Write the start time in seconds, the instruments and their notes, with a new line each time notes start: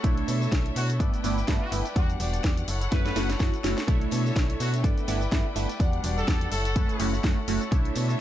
Already playing: string section A4
0.03 fm bass B1, string section D3 C#5 E5, analog polysynth A3 D4 E4 C#5, clean electric guitar D4 E4 A4 C#5, kick, closed hi-hat, shaker
0.18 closed hi-hat
0.27 fm bass B2, clean electric guitar D4 E4 A4 C#5, open hi-hat, tambourine, shaker
0.41 clean electric guitar E4 A4 C#5, tambourine, shaker
0.52 fm bass B1, clean electric guitar D4 E4 A4 C#5, kick, snare, closed hi-hat, shaker
0.66 closed hi-hat
0.75 fm bass B2, clean electric guitar D4 E4 A4 C#5, horn section F#4, open hi-hat, tambourine, shaker
0.89 clean electric guitar E4 A4 C#5, closed hi-hat, tambourine, shaker
0.99 fm bass G2, analog polysynth A3 B3 D4 A4, clean electric guitar B3 E4 B4 D5, string section E4 B4 G5, kick, closed hi-hat, shaker
1.13 fm bass G1, clean electric guitar E4 B4 D5, closed hi-hat, shaker
1.23 fm bass G1, analog polysynth A3 B3 D4 E4, clean electric guitar B3 E4 B4 D5, open hi-hat, tambourine, shaker
1.37 clean electric guitar E4 B4 D5, tambourine, shaker
1.47 fm bass G2, analog polysynth A3 B3 D4 E4, clean electric guitar B3 E4 B4 D5, kick, snare, closed hi-hat, tambourine, shaker
1.61 horn section F#4
1.72 fm bass G1, analog polysynth A3 B3 D4 E4, open hi-hat, tambourine, shaker
1.85 clean electric guitar E4 B4 D5, closed hi-hat, tambourine, shaker
1.95 fm bass E2, analog polysynth G3 B3 D4 F#5, string section G3 D4 F#5, clean electric guitar B3 F#4 G4 D5, horn section F#4, kick, closed hi-hat, shaker
2.10 closed hi-hat, shaker
2.20 fm bass E1, clean electric guitar B3 F#4 G4 D5, open hi-hat, tambourine, shaker
2.33 clean electric guitar F#4 G4 D5, closed hi-hat, tambourine, shaker
2.44 fm bass E2, clean electric guitar B3 F#4 G4 D5, kick, snare, closed hi-hat, tambourine, shaker
2.57 closed hi-hat, shaker
2.68 fm bass F#1, clean electric guitar E4 A4 C#5, string section E4 A4, open hi-hat, tambourine, shaker
2.81 clean electric guitar A4 C#5, closed hi-hat, tambourine, shaker
2.92 fm bass F#2, analog polysynth A3 C#4 E4 B4, horn section B4, kick, snare, closed hi-hat, shaker
3.05 clean electric guitar A4 C#5, snare, closed hi-hat, shaker
3.15 fm bass F#1, analog polysynth A3 C#4 E4 F#4, clean electric guitar E4 A4 C#5, snare, open hi-hat, tambourine, shaker
3.29 clean electric guitar A4 C#5, snare, closed hi-hat, tambourine, shaker
3.39 fm bass F#2, analog polysynth A3 C#4 E4 F#4, clean electric guitar E4 A4 C#5, kick, snare, open hi-hat, shaker
3.54 closed hi-hat, shaker
3.63 fm bass F#1, analog polysynth A3 C#4 E4 F#4, snare, open hi-hat, tambourine, shaker
3.77 clean electric guitar A4 C#5, snare, closed hi-hat, tambourine, shaker
3.87 fm bass B1, string section D3 C#5 E5, analog polysynth A3 D4 E4 C#5, clean electric guitar D4 E4 A4 C#5, kick, closed hi-hat, tambourine, shaker
4.01 closed hi-hat
4.11 fm bass B2, clean electric guitar D4 E4 A4 C#5, open hi-hat, tambourine, shaker
4.25 clean electric guitar E4 A4 C#5, tambourine, shaker
4.36 fm bass B1, clean electric guitar D4 E4 A4 C#5, kick, snare, closed hi-hat, tambourine, shaker
4.50 closed hi-hat
4.59 fm bass B2, clean electric guitar D4 E4 A4 C#5, horn section F#4, open hi-hat, tambourine, shaker
4.73 clean electric guitar E4 A4 C#5, closed hi-hat, tambourine, shaker
4.83 fm bass G2, analog polysynth A3 B3 D4 A4, clean electric guitar B3 E4 B4 D5, string section E4 B4 G5, kick, closed hi-hat, shaker
4.97 fm bass G1, clean electric guitar E4 B4 D5, closed hi-hat, shaker
5.07 fm bass G1, analog polysynth A3 B3 D4 E4, clean electric guitar B3 E4 B4 D5, open hi-hat, tambourine, shaker
5.21 clean electric guitar E4 B4 D5, tambourine, shaker
5.31 fm bass G2, analog polysynth A3 B3 D4 E4, clean electric guitar B3 E4 B4 D5, kick, snare, closed hi-hat, shaker
5.55 fm bass G1, analog polysynth A3 B3 D4 E4, open hi-hat, tambourine, shaker
5.69 clean electric guitar E4 B4 D5, closed hi-hat, tambourine, shaker
5.79 fm bass E2, analog polysynth G3 B3 D4 F#5, string section G3 D4 F#5, clean electric guitar B3 F#4 G4 D5, kick, closed hi-hat, shaker
5.93 closed hi-hat
6.03 fm bass E1, clean electric guitar B3 F#4 G4 D5, open hi-hat, tambourine, shaker
6.17 clean electric guitar F#4 G4 D5, horn section A4, tambourine, shaker
6.28 fm bass E2, clean electric guitar B3 F#4 G4 D5, kick, snare, closed hi-hat, shaker
6.41 closed hi-hat
6.51 fm bass F#1, clean electric guitar E4 A4 C#5, string section E4 A4, horn section A4, open hi-hat, tambourine, shaker
6.65 clean electric guitar A4 C#5, closed hi-hat, tambourine, shaker
6.76 fm bass F#2, analog polysynth A3 C#4 E4 B4, kick, closed hi-hat, shaker
6.89 fm bass F#1, clean electric guitar A4 C#5, closed hi-hat, shaker
6.99 fm bass F#1, analog polysynth A3 C#4 E4 F#4, clean electric guitar E4 A4 C#5, open hi-hat, tambourine, shaker
7.12 clean electric guitar A4 C#5, tambourine, shaker
7.23 fm bass F#2, analog polysynth A3 C#4 E4 F#4, clean electric guitar E4 A4 C#5, kick, snare, open hi-hat, shaker
7.48 fm bass F#1, analog polysynth A3 C#4 E4 F#4, open hi-hat, tambourine, shaker
7.60 clean electric guitar A4 C#5, closed hi-hat, tambourine, shaker
7.71 fm bass B1, string section D3 C#5 E5, analog polysynth A3 D4 E4 C#5, clean electric guitar D4 E4 A4 C#5, kick, closed hi-hat, shaker
7.85 closed hi-hat
7.95 fm bass B2, clean electric guitar D4 E4 A4 C#5, open hi-hat, tambourine, shaker
8.08 clean electric guitar E4 A4 C#5, tambourine, shaker